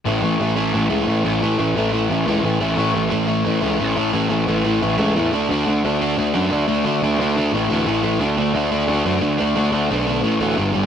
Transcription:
<<
  \new Staff \with { instrumentName = "Overdriven electric guitar" } { \clef bass \time 4/4 \key d \major \tempo 4 = 177 <a, e a>8 <a, e a>8 <a, e a>8 <a, e a>8 <a, e a>8 <a, e a>8 <a, e a>8 <a, e a>8 | <a, e a>8 <a, e a>8 <a, e a>8 <a, e a>8 <a, e a>8 <a, e a>8 <a, e a>8 <a, e a>8 | <a, e a>8 <a, e a>8 <a, e a>8 <a, e a>8 <a, e a>8 <a, e a>8 <a, e a>8 <a, e a>8 | <a, e a>8 <a, e a>8 <a, e a>8 <a, e a>8 <a, e a>8 <a, e a>8 <a, e a>8 <d a d'>8 |
<d a d'>8 <d a d'>8 <d a d'>8 <d a d'>8 <d a d'>8 <d a d'>8 <d a d'>8 <d a d'>8 | <d a d'>8 <d a d'>8 <d a d'>8 <d a d'>8 <a, e a>8 <a, e a>8 <a, e a>8 <a, e a>8 | <d a d'>8 <d a d'>8 <d a d'>8 <d a d'>8 <d a d'>8 <d a d'>8 <d a d'>8 <d a d'>8 | <d a d'>8 <d a d'>8 <d a d'>8 <d a d'>8 <a, e a>8 <a, e a>8 <g, d g>8 <g, d g>8 | }
  \new Staff \with { instrumentName = "Picked electric bass" } { \clef bass \time 4/4 \key d \major a,,8 a,,8 a,,4 a,,8 cis,8 a,,8 a,,8 | a,,8 a,,8 a,,4 a,,8 cis,8 a,,8 a,,8 | a,,8 a,,8 a,,4 a,,8 cis,8 a,,8 a,,8 | a,,8 a,,8 a,,4 a,,8 cis,8 e,8 d,8 |
d,8 d,8 d,4 d,8 fis,8 d,8 d,8 | d,8 d,8 d,4 a,,8 d,8 a,,8 a,,8 | d,8 d,8 d,4 d,8 fis,8 d,8 d,8 | d,8 d,8 b,,4 a,,8 d,8 g,,8 g,,8 | }
>>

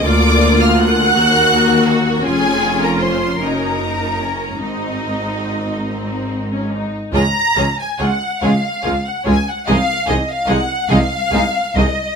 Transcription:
<<
  \new Staff \with { instrumentName = "Violin section" } { \time 6/8 \key des \major \tempo 4. = 48 d'''8. f'''16 ges'''4. ges''8 | aes''8. bes''16 c'''8 bes''4. | ees''2~ ees''8 r8 | bes''8. aes''16 ges''8 f''8. ges''16 aes''16 ges''16 |
f''8 ees''16 f''16 ges''8 f''4 ees''8 | }
  \new Staff \with { instrumentName = "Violin section" } { \time 6/8 \key des \major d''8. f''16 ges''4. ges'8 | aes'8. bes'16 c''8 bes'4. | ees'2~ ees'8 r8 | <aes' des''>8 <aes' des''>8 <aes' des''>8 <aes' des''>8 <aes' des''>8 <aes' des''>8 |
<aes' ees''>8 <aes' ees''>8 <aes' ees''>8 <aes' ees''>8 <aes' ees''>8 <aes' ees''>8 | }
  \new Staff \with { instrumentName = "Viola section" } { \time 6/8 \key des \major << { f'4. ges'4. | f'4. ees'4. | ees'4. c'8. des'16 ees'8 | f'8 f'8 f'8 f'8 f'8 f'8 |
ees'8 ees'8 ees'8 ees'8 ees'8 ees'8 | } \\ { bes4. bes4. | des'4. des'8 ees'8 des'8 | c'4. r4. | aes8 aes8 aes8 aes8 aes8 aes8 |
aes8 aes8 aes8 aes8 aes8 aes8 | } >> }
  \new Staff \with { instrumentName = "Cello section" } { \clef bass \time 6/8 \key des \major d,4. ees,4. | f,4. ges,4. | aes,2~ aes,8. r16 | des,8 des,8 des,8 des,8 des,8 des,8 |
c,8 c,8 c,8 c,8 c,8 c,8 | }
  \new Staff \with { instrumentName = "Double bass section" } { \clef bass \time 6/8 \key des \major d,4. ees,4. | f,,4. ges,,4. | aes,,2~ aes,,8. r16 | des,8 des,8 des,8 des,8 des,8 des,8 |
c,8 c,8 c,8 c,8 c,8 c,8 | }
>>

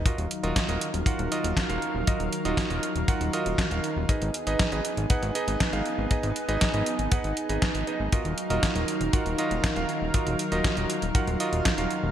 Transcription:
<<
  \new Staff \with { instrumentName = "Electric grand piano" } { \time 4/4 \key ees \minor \tempo 4 = 119 <f' ges' bes' ees''>16 r8 <f' ges' bes' ees''>8 <f' ges' bes' ees''>16 r8 <f' ges' bes' ges''>8 <f' ges' bes' ees''>8. <f' ges' bes' f''>8. | <f' ges' bes' ees''>16 r8 <f' ges' bes' ees''>8 <f' ges' bes' ees''>16 r8 <f' ges' bes' ges''>8 <f' ges' bes' ees''>8. <f' ges' bes' f''>8. | <ees' aes' ces'' ees''>16 r8 <ees' aes' ces'' ees''>8 <ees' aes' ces'' ees''>16 r8 <ees' aes' ces'' ges''>8 <ees' aes' ces'' ees''>8. <ees' aes' ces'' f''>8. | <ees' aes' ces'' ees''>16 r8 <ees' aes' ces'' ees''>8 <ees' aes' ces'' ees''>16 r8 <ees' aes' ces'' ges''>8 r16 <ees' aes' ces'' ees''>8. <ees' aes' ces'' ees''>8 |
<f' ges' bes' ees''>16 r8 <f' ges' bes' ees''>8 <f' ges' bes' ees''>16 r8 <f' ges' bes' ges''>8 <f' ges' bes' ees''>8. <f' ges' bes' f''>8. | <f' ges' bes' ees''>16 r8 <f' ges' bes' ees''>8 <f' ges' bes' ees''>16 r8 <f' ges' bes' ges''>8 <f' ges' bes' ees''>8. <f' ges' bes' f''>8. | }
  \new Staff \with { instrumentName = "Analog synth pad" } { \time 4/4 \key ees \minor << { <ees ges bes' f''>1~ | <ees ges bes' f''>1 | <ces' aes'>1~ | <ces' aes'>1 |
<ees ges bes' f''>1~ | <ees ges bes' f''>1 | } \\ { ees'1~ | ees'1~ | ees'1~ | ees'1~ |
ees'1~ | ees'1 | } >> }
  \new Staff \with { instrumentName = "Analog synth bass" } { \clef bass \time 4/4 \key ees \minor r16 ees,,16 r16 ees,,16 r16 ees,,16 r16 ees,,16 r16 ees,,16 r16 ees,,16 r16 ees,,16 r16 ees,,16 | r16 ees,,16 r16 ees,,16 r16 ees,,16 r16 ees,,16 r16 ees,,16 r16 ees,,16 r16 ees,,16 r16 ees,,16 | r16 aes,,16 r16 aes,,16 r16 aes,,16 r16 aes,,16 r16 aes,,16 r16 aes,,16 r16 aes,,16 r16 aes,,16 | r16 aes,,16 r16 aes,,16 r16 aes,,16 r16 aes,,16 r16 aes,,16 r16 aes,,16 r16 aes,,16 r16 aes,,16 |
r16 ees,,16 r16 ees,,16 r16 ees,,16 r16 ees,,16 r16 ees,,16 r16 ees,,16 r16 ees,,16 r16 ees,,16 | r16 ees,,16 r16 ees,,16 r16 ees,,16 r16 ees,,16 r16 ees,,16 r16 ees,,16 r16 ees,,16 r16 ees,,16 | }
  \new DrumStaff \with { instrumentName = "Drums" } \drummode { \time 4/4 <hh bd>16 hh16 hh16 hh16 <hh bd sn>16 hh16 hh16 hh16 <hh bd>16 hh16 hh16 hh16 <hh bd sn>16 hh16 hh8 | <hh bd>16 hh16 hh16 hh16 <hh bd sn>16 hh16 hh16 hh16 <hh bd>16 hh16 hh16 hh16 <hh bd sn>16 hh16 hh8 | <hh bd>16 hh16 hh16 hh16 <hh bd sn>16 hh16 hh16 hh16 <hh bd>16 hh16 hh16 hh16 <hh bd sn>16 hh16 hh8 | <hh bd>16 hh16 hh16 hh16 <hh bd sn>16 hh16 hh16 hh16 <hh bd>16 hh16 hh16 hh16 <hh bd sn>16 hh16 hh8 |
<hh bd>16 hh16 hh16 hh16 <hh bd sn>16 hh16 hh16 hh16 <hh bd>16 hh16 hh16 hh16 <hh bd sn>16 hh16 hh8 | <hh bd>16 hh16 hh16 hh16 <hh bd sn>16 hh16 hh16 hh16 <hh bd>16 hh16 hh16 hh16 <hh bd sn>16 hh16 hh8 | }
>>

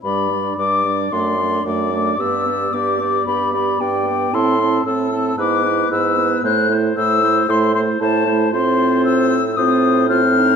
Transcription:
<<
  \new Staff \with { instrumentName = "Flute" } { \time 4/4 \key g \major \tempo 4 = 114 b''4 d'''4 c'''4 d'''4 | e'''4 d'''4 b''8 b''8 g''4 | c'''4 e'''4 d'''4 e'''4 | fis'''8 r8 e'''4 c'''8 c'''8 a''4 |
\key f \major c'''4 e'''4 ees'''4 f'''4 | }
  \new Staff \with { instrumentName = "Oboe" } { \time 4/4 \key g \major d''8 d''8 d''8 d''8 d''8 d''8 d''8 d''8 | d''8 d''8 d''8 d''8 d''8 d''8 d''8 d''8 | a'8 a'8 a'8 a'8 b'8 b'8 b'8 b'8 | c''8 c''8 c''8 c''8 c''8 c''8 c''8 c''8 |
\key f \major c''2 c''4 c''4 | }
  \new Staff \with { instrumentName = "Clarinet" } { \time 4/4 \key g \major d'8 d'8 d'8 d'8 d'8 d'8 d'8 d'8 | g'8 g'8 g'8 g'8 g'8 g'8 g'8 g'8 | e'8 e'8 e'8 e'8 e'8 e'8 e'8 e'8 | e'8 e'8 e'8 e'8 e'8 e'8 e'8 e'8 |
\key f \major f'2 f'4 f'8 ees'8 | }
  \new Staff \with { instrumentName = "French horn" } { \time 4/4 \key g \major g8 g8 g8 g8 a8 a8 a8 a8 | b8 b8 b8 b8 b8 b8 b8 b8 | c'8 c'8 c'8 c'8 b8 b8 b8 b8 | a8 a8 a8 a8 a8 a8 a8 a8 |
\key f \major c'2 c'4 c'4 | }
  \new Staff \with { instrumentName = "Bassoon" } { \clef bass \time 4/4 \key g \major g,4 g,4 fis,4 fis,4 | g,4 g,4 g,4 g,4 | a,4 a,4 gis,4 gis,4 | a,4 a,4 a,4 a,4 |
\key f \major a,2 a,2 | }
>>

